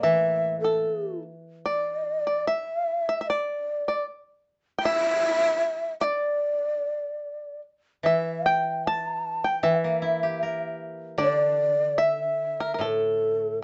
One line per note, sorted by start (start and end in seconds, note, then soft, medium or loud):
0.00 0.83 A2 medium
0.00 2.48 E3 medium
0.00 0.84 A3 soft
0.00 1.26 A#3 soft
0.00 0.60 E5 loud
0.00 0.59 E5 medium
0.60 1.20 A4 medium
0.60 1.22 A4 soft
1.66 2.23 D5 medium
1.66 2.50 D5 medium
2.27 2.46 D5 medium
2.47 3.04 E5 medium
2.47 3.29 E5 medium
3.09 3.20 E5 medium
3.21 3.28 E5 medium
3.27 4.05 D5 medium
3.27 3.84 D5 medium
3.88 4.05 D5 medium
4.79 5.95 E5 loud
4.79 4.84 G5 medium
4.85 5.97 E5 medium
6.00 7.61 D5 medium
6.00 6.05 E5 medium
8.03 9.62 E3 medium
8.03 8.47 E5 medium
8.03 8.43 E5 medium
8.46 8.83 G5 medium
8.46 8.87 G5 medium
8.86 9.50 A5 medium
8.86 9.42 A5 medium
9.44 9.63 G5 medium
9.49 9.67 G5 medium
9.63 11.99 E3 medium
9.63 10.77 E5 medium
9.71 9.77 G5 medium
9.76 10.80 E5 medium
9.84 11.40 A#3 soft
10.02 11.59 E4 soft
10.23 11.80 G4 soft
10.43 12.00 A#4 soft
11.18 13.60 D3 medium
11.18 11.95 D5 medium
11.22 12.04 D5 loud
11.98 12.55 E5 medium
12.02 12.87 E5 medium
12.60 12.72 A#4 medium
12.74 12.80 A#4 soft
12.79 13.63 A2 medium
12.79 13.58 A4 medium
12.85 13.63 A4 medium